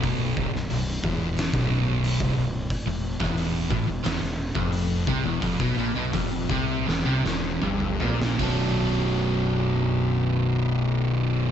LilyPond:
<<
  \new Staff \with { instrumentName = "Overdriven electric guitar" } { \clef bass \time 4/4 \key b \minor \tempo 4 = 85 r1 | r16 e,8 e,8. a,16 e,16 e,16 e,8 eis,8. c16 e,16 | eis,16 b,16 ais,16 b,16 eis,8 c8 e,16 c16 e,8 g,8 ais,8 | <b,, fis, b, fis d'>1 | }
  \new Staff \with { instrumentName = "Distorted electric guitar" } { \clef bass \time 4/4 \key b \minor b,,8 c,16 b,,16 b,,8 e,8. b,,4 c,16 b,,8 | r16 e,8 e,8. a,16 e,16 e,16 e,8 eis,8. c16 e,16 | eis,16 b,16 ais,16 b,16 eis,8 c8 e,16 c16 e,8 g,8 ais,8 | <b,, fis, b,>1 | }
  \new Staff \with { instrumentName = "Distorted electric guitar" } { \clef bass \time 4/4 \key b \minor b,,8 c,16 b,,16 b,,8 e,8. b,,4 c,16 b,,8 | r16 e,8 e,8. a,16 e,16 e,16 e,8 eis,8. c16 e,16 | eis,16 b,16 ais,16 b,16 eis,8 c8 e,16 c16 e,8 g,8 ais,8 | <b,, fis, b,>1 | }
  \new Staff \with { instrumentName = "Fingered electric bass" } { \clef bass \time 4/4 \key b \minor b,,,8 c,,16 b,,,16 b,,,8 e,,8. b,,,4 c,,16 b,,,8 | r16 e,,8 e,,8. a,,16 e,,16 e,,16 e,,8 eis,,8. c,16 e,,16 | eis,,16 b,,16 ais,,16 b,,16 eis,,8 c,8 e,,16 c,16 e,,8 g,,8 ais,,8 | b,,,1 | }
  \new DrumStaff \with { instrumentName = "Drums" } \drummode { \time 4/4 <hho bd>8 bd16 sn16 hho8 bd8 <hho sn>16 bd8. hho16 bd8. | <hho bd>8. <bd sn>16 hho8 bd8 <hho sn>8. bd16 hho8 bd8 | <hho bd>16 bd8. <hho bd>8 bd8 sn8 sn8 toml16 toml16 tomfh16 sn16 | <hho bd>4 r4 r4 r4 | }
>>